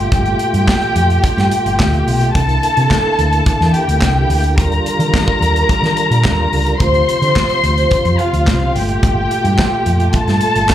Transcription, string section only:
Already playing: G4 G5
2.35 A4 A5
3.74 G4 G5
4.58 A#4 A#5
6.80 C5 C6
8.20 F4 F5
8.76 G4 G5
10.14 A4 A5

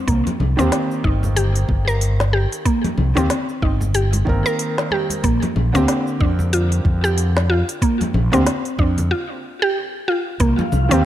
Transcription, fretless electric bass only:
0.07 C2
0.40 C2
0.59 D#2
1.04 G1
1.69 G1
2.98 C2
3.17 D#2
3.62 G1
4.27 G1
5.24 A#1
5.56 A#1
5.75 D2
6.20 F2
6.85 F2
8.14 A#1
8.33 D2
8.79 F2
10.40 C2
10.72 C2
10.91 D#2

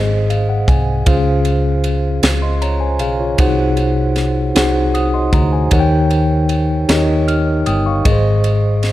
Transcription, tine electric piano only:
Already playing: G#2 G#4 C5 D#5
0.30 F5
0.49 F#5
0.68 G#5
1.06 C#3 C#4 F4 G#4 C5 F5
2.42 D#5 C6
2.62 C#5 A#5
2.80 C5 G#5
3.00 G#4 F5
3.19 F4 C#5
3.39 C3 D#4 F#4 G#4 C5 F#5
4.55 D#4 F#4 G#4 C5 F#5
4.94 F#5 D#6
5.14 D#5 C6
5.33 A#5
5.53 C5 G#5
5.72 D#3 D#4 G4 A#4 C#5 F#5
5.79 G5
6.88 D#4 G4 A#4 C#5 D#5
7.28 F6
7.66 G5 D#6
7.86 F5 C#6
8.05 G#2 G#4 A#4 D#5
8.12 C5

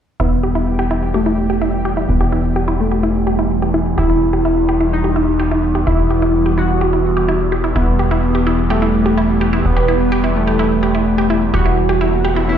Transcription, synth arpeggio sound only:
0.20 E4
0.43 G4
0.55 E4
0.79 G4
0.91 E4
1.14 G4
1.26 E4
1.50 G4
1.62 E4
1.85 G4
1.97 E4
2.21 G4
2.32 E4
2.56 G4
2.68 E4
2.91 G4
3.03 E4
3.27 G4
3.39 E4
3.62 G4
3.74 E4
3.98 G4
4.10 E4
4.33 G4
4.45 E4
4.69 G4
4.81 E4
5.04 G4
5.16 E4
5.40 G4
5.51 E4
5.75 G4
5.87 E4
6.10 G4
6.22 E4
6.46 G4
6.58 E4
6.81 G4
6.93 E4
7.17 G4
7.28 E4
7.52 G4
7.64 E4
7.76 E4
7.99 G4
8.11 E4
8.35 G4
8.47 E4
8.70 G4
8.82 E4
9.06 G4
9.18 E4
9.41 G4
9.53 E4
9.77 G4
9.88 E4
10.12 G4
10.24 E4
10.47 G4
10.59 E4
10.83 G4
10.95 E4
11.18 G4
11.30 E4
11.54 G4
11.66 E4
11.89 G4
12.01 E4
12.25 G4
12.36 E4

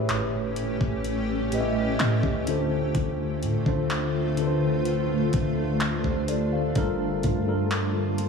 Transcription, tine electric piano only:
Already playing: A2 A3 G4 B4 C#5 E5
1.52 A2 A3 G4 B4 D#5
1.61 E5
2.47 D3 D4 F4 A4 C5
3.66 D3 D4 F4 A4 C5
4.37 D3 D4 F4 A4 B4
4.47 C5
5.58 D4 A4
6.05 G4 C5
6.29 A4 D5
6.53 C5 F5
6.75 G3 D4 F4 A4 A#4
7.46 G3 D4 F4 A4 A#4

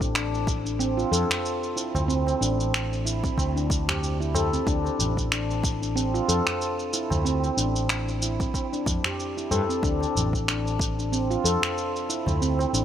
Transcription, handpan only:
Already playing: D4
0.15 D4
0.65 D4
0.79 C4
0.97 F4
1.12 A4
1.76 E4
2.08 C4
2.41 D4
3.05 E4
3.24 C4
3.56 D4
3.89 G4
4.20 E4
4.35 A4
4.53 C4
4.67 D4
5.32 D4
5.82 D4
5.96 C4
6.14 F4
6.29 A4
6.93 E4
7.25 C4
7.57 D4
8.22 E4
8.40 C4
8.73 D4
9.06 G4
9.37 E4
9.51 A4
9.69 C4
9.84 D4
10.48 D4
10.99 D4
11.12 C4
11.31 F4
11.45 A4
12.10 E4
12.42 C4
12.74 D4

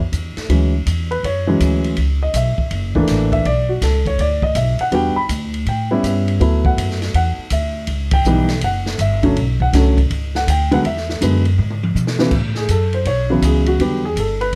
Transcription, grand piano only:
0.49 E3 F#3 G#3 C#4
1.11 B4
1.25 C#5
1.47 E3 F#3 G#3 C#4
2.23 D#5
2.36 E5
2.95 E3 A3 A#3 D4
3.33 E5
3.46 D5
3.69 F#4
3.83 A4
4.07 C#5
4.21 D5
4.43 D#5
4.56 E5
4.81 F#5
4.92 G3 B3 D4 F#4 G5
5.16 B5
5.69 G5
5.91 G3 B3 C#4 E4
6.06 E5
6.40 F#3 A3 B3 E4
6.66 F#5
7.16 F#5
7.52 E5
8.14 G5
8.26 E3 G3 B3 D#4
8.64 F#5
9.01 E5
9.23 D3 F#3 A3 C#4
9.62 F#5
9.74 D3 F#3 A3 C#4
10.36 F#5
10.50 G5
10.71 D3 F#3 G#3 B3 F#5
10.86 E5
11.21 D3 F#3 G#3 B3
12.19 C#3 E3 F#3 B3
12.57 G#4
12.71 A4
12.94 C5
13.07 C#5
13.30 C#3 E3 F#3 B3
13.45 G#4
13.68 F#4
13.80 D3 F#3 G3 B3 G4
14.05 G#4
14.19 A4
14.41 B4

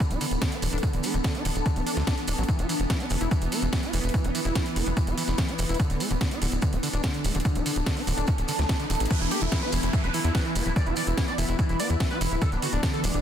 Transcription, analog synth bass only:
0.11 D1
0.31 D1
0.62 D1
0.73 D1
0.93 D1
1.14 D1
1.45 D1
1.55 D1
1.76 D1
1.97 D2
2.28 D1
2.38 A1
2.59 E1
2.80 E1
3.11 E1
3.21 E1
3.42 E1
3.62 E1
3.93 E1
4.04 E1
4.24 E1
4.45 E1
4.76 E1
4.87 E1
5.07 E1
5.28 E1
5.59 E1
5.69 E1
5.90 D1
6.11 D1
6.42 D1
6.52 D1
6.73 D1
6.93 D1
7.24 D1
7.35 D1
7.55 D1
7.76 D1
8.07 D1
8.18 D1
8.38 D1
8.59 D2
8.90 D1
9.00 A1
9.21 E1
9.42 E1
9.73 E1
9.83 E1
10.04 E1
10.24 E2
10.55 E1
10.66 D1
10.87 E1
11.07 E1
11.38 E1
11.49 E1
11.69 E1
11.90 E2
12.21 E1
12.31 D1
12.52 D1
12.73 D1
13.04 D1
13.14 D1

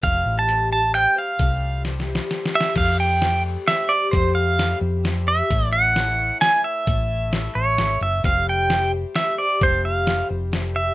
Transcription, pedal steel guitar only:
0.04 F5
0.39 A5
0.73 A5
0.95 G5
1.18 F5
2.55 E5
2.77 F5
3.00 G5
3.68 E5
3.89 D5
4.11 C5
4.35 F5
5.28 E5
5.73 F#5
6.41 G#5
6.64 E5
7.55 C#5
8.03 E5
8.25 F5
8.49 G5
9.16 E5
9.38 D5
9.63 C5
9.85 F5
10.76 E5

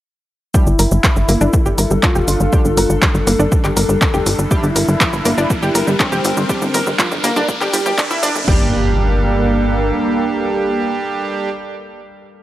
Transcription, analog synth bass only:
0.67 G1
0.79 G1
0.92 G1
1.16 G1
1.29 G1
1.41 G1
1.66 G1
1.78 G1
1.91 G1
2.15 F1
2.28 G1
2.40 G1
2.65 G1
2.77 G1
2.90 G1
3.14 G1
3.27 G1
3.39 G1
3.64 G1
3.77 G1
3.89 G1
4.14 F1
4.26 G1
4.39 G1
4.63 G1
4.76 G1
4.88 G1
5.13 G1
5.25 G1
5.38 G1
5.62 G1
5.75 G1
5.87 G1
6.12 F1
6.25 G1
6.37 G1
6.62 G1
6.74 G1
6.87 G1
7.12 G1
7.24 G1
7.36 G1
7.61 G1
7.73 G1
7.86 G1
8.10 F1
8.23 G1
8.35 G1
8.48 G1

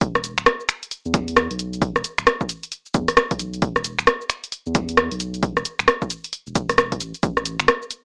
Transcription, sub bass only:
0.01 E1
0.38 D1
1.06 E2
1.50 B1
1.96 E1
2.18 D1
2.94 E2
3.31 B1
3.62 E1
3.99 D1
4.66 E2
5.11 B1
5.57 E1
5.79 D1
6.47 E1
6.55 E1
7.01 A1
7.23 A1
7.60 G1

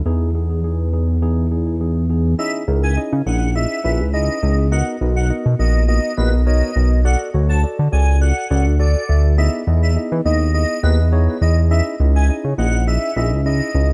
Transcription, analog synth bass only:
0.06 E2
2.68 C#2
3.13 C#3
3.26 A#1
3.85 A#1
4.00 C#2
4.43 C#2
5.01 B1
5.46 B2
5.60 A#1
6.18 A#1
6.33 B1
6.76 B1
7.34 D2
7.79 D3
7.93 C#2
8.51 C#2
8.66 D2
9.09 D2
9.67 E2
10.12 E3
10.25 D#2
10.83 D#2
10.99 E2
11.41 E2
12.00 C#2
12.44 C#3
12.58 A#1
13.16 A#1
13.32 C#2
13.74 C#2

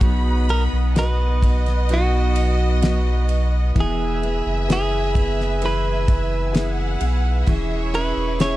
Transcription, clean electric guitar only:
0.50 A#4
0.99 B4
1.93 F#4
3.80 G#4
4.73 G#4
5.66 B4
7.95 B4
8.41 C#5

